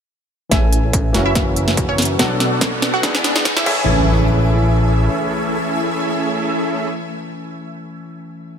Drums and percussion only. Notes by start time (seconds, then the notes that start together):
0.51 kick, snare, closed hi-hat
0.72 closed hi-hat
0.93 kick, closed hi-hat
1.14 snare, closed hi-hat
1.35 kick, snare, closed hi-hat
1.56 closed hi-hat
1.68 snare
1.77 kick, closed hi-hat
1.98 snare, closed hi-hat
2.02 closed hi-hat
2.05 closed hi-hat
2.19 kick, snare, closed hi-hat
2.40 snare, closed hi-hat
2.61 kick, snare, closed hi-hat
2.82 snare, closed hi-hat
3.03 kick, snare, closed hi-hat
3.15 snare
3.24 snare, closed hi-hat
3.36 snare
3.45 kick, snare, closed hi-hat
3.57 snare
3.66 kick, crash